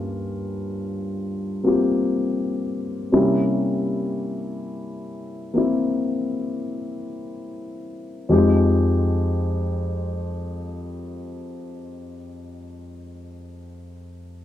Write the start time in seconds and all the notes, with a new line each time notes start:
Already playing: G2 G3 A#3 C#4 F4
1.64 A#3 C4 F4 G4
3.12 C3 G3 A#3 C#4 E4
5.54 A#3 C4 E4
8.29 F2 F3 G#3 D#4 G4